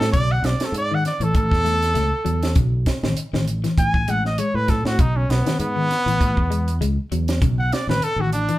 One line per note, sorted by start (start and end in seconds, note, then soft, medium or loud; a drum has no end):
0.00 0.12 A2 medium
0.00 0.12 A4 loud
0.00 snare medium
0.12 0.42 B1 loud
0.12 0.33 C#3 medium
0.12 0.33 D5 loud
0.12 kick loud
0.12 closed hi-hat medium
0.32 0.47 F#5 medium
0.42 0.58 B1 loud
0.42 0.67 D5 medium
0.42 snare medium
0.42 closed hi-hat soft
0.59 muted fingered electric bass stroke soft
0.59 snare medium
0.59 closed hi-hat medium
0.65 0.76 A4 medium
0.72 1.02 G#2 medium
0.72 closed hi-hat medium
0.78 0.96 D5 loud
0.91 1.10 D#3 medium
0.91 1.06 F#5 medium
1.05 1.25 D5 medium
1.05 snare soft
1.05 closed hi-hat soft
1.20 1.34 A1 loud
1.20 1.39 E3 medium
1.20 1.35 A4 medium
1.20 closed hi-hat soft
1.34 1.50 A1 loud
1.34 2.53 A4 loud
1.34 kick medium
1.34 closed hi-hat medium
1.51 1.93 E2 medium
1.51 kick medium
1.51 snare soft
1.65 1.83 A3 medium
1.65 snare soft
1.65 closed hi-hat medium
1.82 snare soft
1.82 closed hi-hat medium
1.94 2.11 C#2 medium
1.94 2.13 A3 medium
1.94 snare soft
1.94 closed hi-hat medium
2.25 2.54 E2 medium
2.25 2.43 F#3 medium
2.25 closed hi-hat medium
2.43 snare medium
2.43 closed hi-hat medium
2.55 2.85 B1 loud
2.55 2.74 C#3 medium
2.55 kick loud
2.55 closed hi-hat medium
2.86 kick medium
2.86 snare medium
2.86 closed hi-hat medium
3.03 3.16 A1 medium
3.03 3.22 D#3 medium
3.03 snare medium
3.17 muted fingered electric bass stroke soft
3.17 closed hi-hat medium
3.33 3.62 A1 medium
3.33 3.52 D#3 medium
3.33 snare medium
3.48 closed hi-hat medium
3.64 3.82 E3 medium
3.64 snare soft
3.64 closed hi-hat soft
3.78 4.06 A1 loud
3.78 4.11 G#5 loud
3.78 kick medium
3.78 closed hi-hat medium
3.94 kick medium
4.08 4.37 A1 medium
4.08 4.26 G#3 medium
4.08 4.24 F#5 medium
4.08 closed hi-hat medium
4.25 4.40 D#5 medium
4.25 snare soft
4.38 4.57 G#3 medium
4.38 4.57 C#5 medium
4.38 closed hi-hat medium
4.54 4.83 A2 medium
4.54 4.71 B4 medium
4.68 4.86 F#3 medium
4.68 4.84 A4 medium
4.68 kick medium
4.68 snare soft
4.68 closed hi-hat medium
4.85 4.98 A2 medium
4.85 5.02 F#4 medium
4.85 snare medium
4.99 5.27 B1 loud
4.99 5.17 C#3 medium
4.99 5.18 D#4 medium
4.99 kick loud
4.99 closed hi-hat medium
5.17 5.31 C#4 medium
5.29 5.45 B1 loud
5.29 5.59 B3 medium
5.29 snare medium
5.29 closed hi-hat medium
5.46 5.64 D#3 medium
5.46 snare medium
5.46 closed hi-hat medium
5.59 5.88 G#2 medium
5.59 6.77 B3 loud
5.59 closed hi-hat medium
5.76 5.94 D#3 medium
5.91 snare soft
5.91 closed hi-hat soft
6.06 6.19 A1 medium
6.06 6.25 E3 medium
6.06 closed hi-hat soft
6.20 6.36 A1 loud
6.20 kick medium
6.20 closed hi-hat medium
6.37 6.78 E2 medium
6.37 kick medium
6.50 6.69 G#3 medium
6.50 closed hi-hat medium
6.68 closed hi-hat soft
6.81 6.96 C#2 medium
6.81 6.99 G#3 medium
6.81 closed hi-hat medium
7.12 7.40 E2 medium
7.12 7.30 F#3 medium
7.12 closed hi-hat medium
7.28 snare medium
7.28 closed hi-hat medium
7.42 7.70 B1 loud
7.42 7.60 C#3 medium
7.42 kick loud
7.42 closed hi-hat medium
7.59 7.74 F#5 medium
7.73 7.87 D5 medium
7.73 snare medium
7.73 closed hi-hat medium
7.87 8.00 A1 medium
7.87 8.07 D#3 medium
7.87 8.05 B4 medium
7.87 snare medium
8.02 8.22 A4 loud
8.02 muted fingered electric bass stroke soft
8.02 closed hi-hat medium
8.16 8.46 A1 medium
8.16 8.37 D#3 medium
8.21 8.32 F#4 medium
8.33 8.59 D4 medium
8.33 closed hi-hat medium
8.49 8.59 E3 medium
8.49 closed hi-hat medium